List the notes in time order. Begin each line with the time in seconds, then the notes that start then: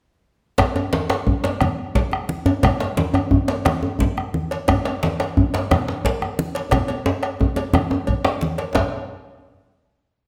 0.58 bombo rim, bombo low, cowbell, djembe slap, low conga, djembe bass
0.76 bombo rim, cowbell, djembe tone, high conga
0.93 djembe slap, high conga
1.10 bombo rim, cowbell, djembe slap
1.27 bombo low, djembe slap, djembe tone
1.44 cowbell, djembe slap, djembe tone
1.61 bombo rim, cowbell, high conga, djembe bass, low conga
1.95 bombo low, cowbell, djembe slap
2.11 bombo rim, djembe tone, high conga
2.29 high conga
2.46 bombo rim, cowbell, djembe slap, djembe bass
2.63 bombo rim, bombo low, cowbell, djembe slap, djembe bass, low conga
2.80 bombo rim, cowbell, djembe slap, high conga, djembe tone
2.97 djembe slap, djembe tone, high conga
3.14 bombo rim, cowbell, djembe bass
3.31 bombo low, djembe slap, djembe bass
3.48 cowbell, djembe slap, djembe tone
3.65 bombo rim, cowbell, djembe slap, high conga, djembe bass, low conga
3.83 djembe tone
3.99 bombo low, djembe slap, djembe bass
4.17 bombo rim, djembe tone, high conga
4.34 high conga
4.51 bombo rim, cowbell, djembe slap
4.68 bombo rim, bombo low, cowbell, low conga, djembe bass
4.85 bombo rim, cowbell, djembe slap, djembe tone, high conga
5.03 djembe slap, high conga
5.20 bombo rim, cowbell, djembe slap
5.37 bombo low, djembe slap, djembe bass
5.54 cowbell, djembe slap, djembe tone
5.71 bombo rim, cowbell, djembe slap, high conga, low conga, djembe bass
5.88 djembe slap
6.04 bombo low, cowbell, djembe slap
6.22 bombo rim, djembe tone, high conga
6.39 high conga
6.55 bombo rim, cowbell, djembe slap
6.71 bombo rim, bombo low, cowbell, djembe tone, low conga, djembe bass
6.88 cowbell, high conga, djembe tone
7.06 bombo rim, djembe slap, djembe tone
7.23 bombo rim, cowbell, djembe slap
7.40 bombo rim, bombo low, djembe slap, high conga, djembe tone
7.56 bombo rim, cowbell, djembe slap, djembe tone, high conga
7.73 bombo rim, cowbell, high conga, djembe tone, low conga, djembe bass
7.90 djembe tone, djembe bass
8.07 bombo low, cowbell, high conga, djembe bass
8.25 bombo rim, djembe slap, djembe bass
8.41 djembe slap, high conga
8.58 bombo rim, cowbell, djembe slap
8.75 bombo low, cowbell, djembe slap, djembe bass, low conga